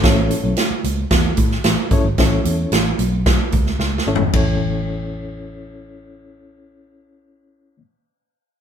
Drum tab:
RD |------------------------------------------------|------------------------------------------------|b-----------------------------------------------|------------------------------------------------|
HH |x-----x-----x-----x-----x-----x-----x-----x-----|x-----x-----x-----x-----x-----x-----------------|------------------------------------------------|------------------------------------------------|
SD |o-----------o-----------o--------o--o-----------|o-----------o-----------o--------o--o---o-------|------------------------------------------------|------------------------------------------------|
FT |------------------------------------------------|--------------------------------------------o---|------------------------------------------------|------------------------------------------------|
BD |o-----------------------o-----o-----------o-----|o-----------------------o-----o-----------------|o-----------------------------------------------|------------------------------------------------|